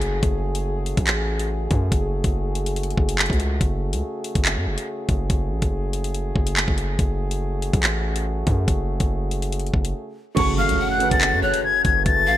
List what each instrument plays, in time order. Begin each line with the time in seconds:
Already playing: 808-style bass F#1, french horn section C#3 A3 F#4 G#4
0.02 closed hi-hat
0.23 808-style bass F#1, kick, closed hi-hat
0.55 closed hi-hat
0.86 closed hi-hat
0.97 808-style bass A1, kick, closed hi-hat
1.07 clap, closed hi-hat
1.40 closed hi-hat
1.71 808-style bass F#2, kick, closed hi-hat
1.92 808-style bass F#1, kick, closed hi-hat
2.24 808-style bass F#1, kick, closed hi-hat
2.55 closed hi-hat
2.66 closed hi-hat
2.76 closed hi-hat
2.83 closed hi-hat
2.90 closed hi-hat
2.98 808-style bass F#1, kick
3.09 closed hi-hat
3.19 clap, closed hi-hat
3.26 closed hi-hat
3.30 808-style bass C#2, kick, closed hi-hat
3.40 closed hi-hat
3.61 808-style bass F#1, french horn section C#3 G#4, kick, closed hi-hat
3.93 808-style bass C#2, closed hi-hat
4.24 closed hi-hat
4.35 808-style bass F#1, kick, closed hi-hat
4.45 clap, closed hi-hat
4.56 808-style bass F#2
4.66 808-style bass F#1
4.78 closed hi-hat
5.09 808-style bass F#1, kick, closed hi-hat
5.30 808-style bass F#1, kick, closed hi-hat
5.51 808-style bass A1
5.62 808-style bass F#1, kick, closed hi-hat
5.93 closed hi-hat
6.04 closed hi-hat
6.14 closed hi-hat
6.36 808-style bass F#1, kick
6.47 closed hi-hat
6.57 clap, closed hi-hat
6.68 808-style bass F#1, kick
6.78 closed hi-hat
6.99 808-style bass F#1, french horn section C#3 A3 F#4, kick, closed hi-hat
7.31 closed hi-hat
7.62 closed hi-hat
7.73 808-style bass A1, kick, closed hi-hat
7.83 clap, closed hi-hat
8.16 closed hi-hat
8.47 808-style bass F#2, kick, closed hi-hat
8.68 808-style bass F#1, kick, closed hi-hat
9.00 808-style bass F#1, kick, closed hi-hat
9.31 closed hi-hat
9.42 closed hi-hat
9.52 closed hi-hat
9.59 closed hi-hat
9.66 closed hi-hat
9.74 808-style bass F#1, kick
9.85 closed hi-hat
10.35 808-style bass F#1, french horn section C#3 A3 F#4, grand piano A3 C#4 F#4 G#4, flute C#6, kick, closed hi-hat, crash, impact
10.39 grand piano A4
10.58 pan flute F5, flute F6
10.69 808-style bass C#2, closed hi-hat
10.79 pan flute F#5
10.91 flute F#6
10.98 grand piano A3 C#4 F#4 G#4, closed hi-hat
11.03 grand piano B4
11.09 808-style bass F#1, grand piano A3 C#4 F#4 G#4, flute A6, kick, closed hi-hat
11.14 grand piano A4
11.21 clap, closed hi-hat
11.33 808-style bass F#2
11.42 808-style bass F#1, pan flute C#5, flute F#6
11.54 closed hi-hat
11.64 flute G#6
11.85 808-style bass F#1, flute G#6, kick, closed hi-hat
12.06 808-style bass F#1, flute A6, kick, closed hi-hat
12.27 808-style bass A1, pan flute F5